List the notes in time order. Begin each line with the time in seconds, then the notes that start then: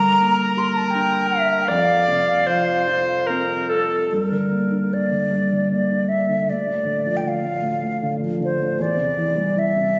Already playing: G2 D3 A#4 A#5
0.20 A#3
0.57 G4 C6
0.68 A#5
0.76 A5
0.86 A#5
0.90 D4 G5
1.28 E5
1.61 F5 G5
1.68 F2 D5
2.08 C3
2.47 F3 C5
3.27 C4 A#4
3.69 A4
3.74 A4
4.12 G2 A4
4.25 A#4
4.31 D3
4.52 A#3
4.71 D4
4.91 A#3 D5
5.11 D3
5.31 G2
5.52 D3
5.72 A#3 D5
5.90 D4
6.09 A#3 E5
6.29 D3
6.48 D2 D5
6.67 A2
6.85 D3
7.04 F3
7.17 G5
7.24 D3
7.28 F5
7.43 A2
7.62 D2
7.83 A2
8.03 D3
8.20 F3
8.40 D3
8.44 C5
8.59 A2
8.79 E2 D5
8.97 C3
9.18 E3
9.36 G3
9.56 E3 E5
9.76 C3